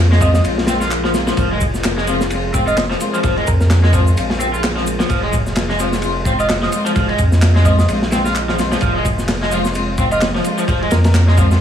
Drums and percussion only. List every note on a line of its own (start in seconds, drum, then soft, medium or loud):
0.12 snare medium
0.21 kick loud
0.21 ride medium
0.21 shaker medium
0.34 snare medium
0.34 shaker soft
0.44 ride medium
0.44 shaker soft
0.58 snare medium
0.67 snare loud
0.67 ride medium
0.67 shaker medium
0.81 snare soft
0.81 shaker soft
0.91 clap loud
0.91 ride medium
0.91 shaker soft
1.04 snare soft
1.14 snare medium
1.14 ride medium
1.14 shaker medium
1.27 snare medium
1.27 shaker soft
1.37 kick loud
1.37 ride medium
1.37 shaker soft
1.61 kick loud
1.61 ride medium
1.61 shaker medium
1.74 snare soft
1.74 shaker soft
1.83 snare loud
1.83 clap loud
1.83 ride medium
1.83 shaker soft
1.98 snare soft
2.07 ride medium
2.07 shaker medium
2.21 snare medium
2.21 shaker soft
2.30 ride medium
2.30 shaker soft
2.54 kick medium
2.54 ride medium
2.54 shaker medium
2.68 ride soft
2.68 shaker soft
2.77 snare loud
2.77 clap loud
2.77 ride medium
2.77 shaker soft
2.91 snare soft
3.00 ride medium
3.00 shaker medium
3.14 ride soft
3.14 shaker soft
3.23 kick loud
3.23 ride medium
3.23 shaker soft
3.37 ride soft
3.47 kick loud
3.47 ride medium
3.47 shaker medium
3.60 snare soft
3.60 shaker soft
3.70 snare loud
3.70 clap loud
3.70 ride medium
3.70 shaker soft
3.84 snare medium
3.93 kick loud
3.93 ride medium
3.93 shaker medium
4.07 shaker soft
4.17 ride medium
4.17 shaker soft
4.30 snare medium
4.40 ride medium
4.40 shaker medium
4.54 shaker soft
4.64 snare loud
4.64 clap loud
4.64 ride medium
4.64 shaker soft
4.77 snare soft
4.87 ride medium
4.87 shaker medium
5.00 snare loud
5.00 ride medium
5.00 shaker soft
5.09 kick loud
5.09 ride medium
5.09 shaker soft
5.33 kick medium
5.33 ride medium
5.33 shaker medium
5.46 snare soft
5.46 shaker soft
5.55 snare loud
5.55 clap loud
5.55 ride loud
5.55 shaker soft
5.70 snare soft
5.79 ride medium
5.79 shaker medium
5.92 snare medium
5.92 shaker soft
6.02 ride medium
6.02 shaker soft
6.25 kick medium
6.25 ride medium
6.25 shaker medium
6.39 ride soft
6.39 shaker soft
6.49 snare loud
6.49 clap loud
6.49 ride medium
6.49 shaker soft
6.62 snare soft
6.72 ride medium
6.72 shaker medium
6.86 ride medium
6.86 shaker soft
6.96 kick loud
6.96 ride medium
6.96 shaker soft
7.09 ride soft
7.18 kick medium
7.18 ride medium
7.18 shaker medium
7.32 snare soft
7.32 shaker soft
7.42 snare loud
7.42 clap loud
7.42 ride medium
7.42 shaker soft
7.56 snare medium
7.65 kick medium
7.65 ride medium
7.65 shaker medium
7.79 snare medium
7.79 shaker soft
7.88 ride medium
7.88 shaker soft
8.02 snare medium
8.12 snare loud
8.12 ride medium
8.12 shaker medium
8.25 snare soft
8.25 shaker soft
8.35 clap loud
8.35 ride medium
8.35 shaker soft
8.49 snare soft
8.59 snare medium
8.59 ride medium
8.59 shaker medium
8.72 snare medium
8.72 shaker soft
8.81 kick loud
8.81 ride loud
8.81 shaker soft
9.05 kick medium
9.05 ride medium
9.05 shaker medium
9.18 snare soft
9.18 shaker soft
9.28 snare loud
9.28 clap loud
9.28 ride loud
9.28 shaker soft
9.42 snare soft
9.51 ride medium
9.51 shaker medium
9.65 snare medium
9.65 shaker soft
9.75 ride medium
9.75 shaker soft
9.98 kick loud
9.98 ride medium
9.98 shaker medium
10.11 ride soft
10.11 shaker soft
10.21 snare loud
10.21 clap loud
10.21 ride medium
10.21 shaker soft
10.35 snare medium
10.44 ride medium
10.44 shaker medium
10.58 ride soft
10.58 shaker soft
10.68 kick loud
10.68 ride medium
10.68 shaker soft
10.82 ride soft
10.91 snare loud
10.91 ride medium
10.91 shaker medium
11.04 snare loud
11.04 ride medium
11.04 shaker soft
11.14 snare loud
11.14 clap loud
11.14 ride medium
11.14 shaker soft
11.28 snare soft
11.38 kick medium
11.38 ride medium
11.38 shaker medium
11.51 snare medium
11.51 shaker soft